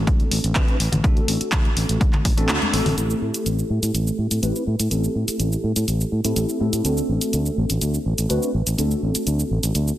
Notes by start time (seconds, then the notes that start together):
Already playing: A3 C4 D4 F#4 A4
0.07 kick, closed hi-hat, high conga, maracas
0.20 closed hi-hat, maracas
0.31 A1, open hi-hat, maracas
0.44 A1, closed hi-hat, maracas
0.55 A3 C4 D4 F#4 B4, kick, clap, closed hi-hat
0.68 closed hi-hat, maracas
0.80 A1, open hi-hat, maracas
0.92 A1, closed hi-hat, low conga, maracas
1.03 D2 A3 C4 D4 F#4 A4, kick, closed hi-hat, maracas
1.17 closed hi-hat, maracas
1.28 A1, open hi-hat, maracas
1.40 muted fingered electric bass stroke, closed hi-hat, maracas
1.52 D2, kick, clap, closed hi-hat
1.65 closed hi-hat, maracas
1.77 A1, open hi-hat, maracas
1.89 A1, closed hi-hat, maracas
2.00 kick, closed hi-hat, high conga, maracas
2.13 clap, closed hi-hat, low conga, maracas
2.25 A1, kick, open hi-hat, maracas
2.37 A1 A3 C4 D4 F#4 A4, closed hi-hat, maracas
2.49 D2, clap, closed hi-hat
2.62 closed hi-hat, high conga, maracas
2.73 A1 A3 C4 D4 F#4 A4, open hi-hat, maracas
2.86 A1, open hi-hat, low conga, maracas
2.97 A1 A3 C4 E4, closed hi-hat, shaker
3.10 shaker
3.22 A2
3.34 closed hi-hat, shaker
3.46 A1, closed hi-hat, shaker
3.59 shaker
3.70 A2
3.83 A2, closed hi-hat, shaker
3.94 A1, closed hi-hat, shaker
4.07 shaker
4.18 A2
4.31 A2, closed hi-hat, shaker
4.42 A1 A3 C4 E4 G4 B4, closed hi-hat, shaker
4.56 shaker
4.67 A2
4.79 A2, closed hi-hat, shaker
4.90 A1 A3 C4 E4 G4 A4, closed hi-hat, shaker
5.04 shaker
5.15 A2
5.28 muted fingered electric bass stroke, closed hi-hat, shaker
5.40 A1, closed hi-hat, shaker
5.52 shaker
5.64 A2
5.76 A2, closed hi-hat, shaker
5.88 A1, closed hi-hat, shaker
6.01 shaker
6.12 A2
6.24 A2 A3 C4 E4 G4 A4, closed hi-hat, shaker
6.36 A1, closed hi-hat, shaker
6.49 shaker
6.60 A2 A3 C4 E4 G4 A4
6.73 A2, closed hi-hat, shaker
6.84 D2 A3 C4 D4 F#4 A4, closed hi-hat, shaker
6.97 shaker
7.09 A1
7.21 closed hi-hat, shaker
7.33 D2, closed hi-hat, shaker
7.46 shaker
7.58 A1
7.70 A1, closed hi-hat, shaker
7.81 D2, closed hi-hat, shaker
7.94 shaker
8.06 A1
8.18 A1, closed hi-hat, shaker
8.29 D2 A3 C4 D4 F#4 B4, closed hi-hat, shaker
8.43 shaker
8.54 A1
8.67 A1, closed hi-hat, shaker
8.77 D2 A3 C4 D4 F#4 A4, closed hi-hat, shaker
8.91 shaker
9.03 A1
9.15 muted fingered electric bass stroke, closed hi-hat, shaker
9.27 D2, closed hi-hat, shaker
9.39 shaker
9.51 A1
9.63 A1, closed hi-hat, shaker
9.75 D2, closed hi-hat, shaker
9.88 shaker